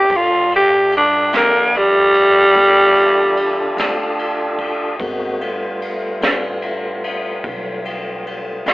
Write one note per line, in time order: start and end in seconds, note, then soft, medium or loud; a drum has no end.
0.00 0.18 G4 loud
0.09 1.29 G2 medium
0.09 4.95 D4 medium
0.09 4.95 F4 medium
0.09 4.96 G4 medium
0.09 4.95 A4 medium
0.09 kick medium
0.09 ride medium
0.16 0.53 F4 medium
0.52 0.93 G4 medium
0.52 ride medium
0.92 ride medium
0.97 1.34 D4 medium
1.32 2.52 F2 medium
1.32 1.78 A#3 loud
1.32 snare loud
1.32 ride medium
1.74 4.16 G3 loud
1.74 ride medium
2.14 ride medium
2.55 3.74 E2 medium
2.55 kick loud
2.55 ride medium
2.96 ride medium
3.37 ride medium
3.77 4.96 D2 medium
3.77 snare loud
3.77 ride medium
4.19 ride medium
4.59 kick medium
4.59 ride medium
4.99 6.19 G1 medium
4.99 5.40 G#3 medium
4.99 5.41 A#3 medium
4.99 5.41 C4 medium
4.99 5.41 F#4 medium
4.99 kick loud
4.99 ride medium
5.41 8.74 G3 medium
5.41 8.74 A3 medium
5.41 8.74 B3 medium
5.41 8.74 F4 medium
5.41 ride medium
5.82 ride medium
6.21 7.40 A1 medium
6.21 snare loud
6.21 ride medium
6.62 ride soft
7.04 ride medium
7.44 8.63 B1 medium
7.44 kick loud
7.44 ride medium
7.85 ride medium
8.27 ride soft
8.66 8.74 C2 medium
8.66 snare loud
8.66 ride medium